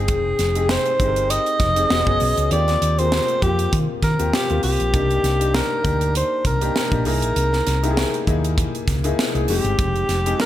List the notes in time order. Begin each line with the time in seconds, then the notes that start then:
Already playing: C4 D#4 G#4 G5
0.08 F1, kick, closed hi-hat
0.39 F1, snare, closed hi-hat
0.55 C4 D#4 G4 G#4, closed hi-hat
0.69 C5, snare
0.86 closed hi-hat
1.00 G1 C4 D#4 G4 G#4, kick, closed hi-hat
1.07 A#4
1.16 closed hi-hat
1.30 D#5, closed hi-hat
1.46 closed hi-hat
1.60 F1, kick, snare, closed hi-hat
1.76 C4 D#4 G4 G#4, closed hi-hat
1.90 E1 B3 C#4 F#4 G#4, snare
2.06 F#1 B3 C#4 F#4 G#4, kick, closed hi-hat
2.20 B1, open hi-hat
2.37 C#2, closed hi-hat
2.50 D#2 A#3 C4 F4 G4 D5, closed hi-hat
2.68 snare, closed hi-hat
2.82 D#2, closed hi-hat
2.98 A#3 C4 F4 G#4 C5, closed hi-hat
3.05 A#4
3.12 snare
3.28 closed hi-hat
3.42 F2 A#3 C4 F4 G4, kick, closed hi-hat
3.59 closed hi-hat
3.73 D#3, kick, closed hi-hat
4.03 D#3 A#4, kick, snare, closed hi-hat
4.18 D#2 A#3 C4 F4 G4, closed hi-hat
4.33 G4, snare
4.49 D#2 A#3 C4 F4 G4, closed hi-hat
4.63 C2 G4, open hi-hat
4.80 A#1, closed hi-hat
4.93 C2 A#3 D4 D#4 G4, kick, closed hi-hat
5.10 closed hi-hat
5.24 C2, snare, closed hi-hat
5.39 A#3 D4 D#4 G4, closed hi-hat
5.54 A#4, snare
5.83 D2 A#3 D4 D#4 G4, kick, closed hi-hat
6.01 closed hi-hat
6.15 C5, closed hi-hat
6.45 C2 A#4, kick, closed hi-hat
6.61 A#3 D4 D#4 G4, closed hi-hat
6.76 snare
6.91 A#1 A#3 D4 D#4 G4, kick, closed hi-hat
7.05 C2 A#3 D#4 E4 G#4 A#4, open hi-hat
7.22 A#1, closed hi-hat
7.36 C2, closed hi-hat
7.53 snare
7.67 C2, snare, closed hi-hat
7.83 A#3 D#4 E4 G4, closed hi-hat
7.91 G#4
7.97 snare
8.14 closed hi-hat
8.27 D#2 A#3 D#4 E4 G#4, kick, closed hi-hat
8.44 closed hi-hat
8.58 kick, closed hi-hat
8.75 closed hi-hat
8.88 C#2, kick, snare, closed hi-hat
9.04 A#3 D#4 E4 G#4, closed hi-hat
9.19 snare
9.34 C2 A#3 D#4 E4 G#4, closed hi-hat
9.48 F1 G#3 C4 D#4 G4, open hi-hat
9.64 G1, closed hi-hat
9.79 F1, kick, closed hi-hat
9.96 closed hi-hat
10.09 F1, snare, closed hi-hat
10.26 G#3 C4 D#4 G#4, closed hi-hat
10.40 A#4, snare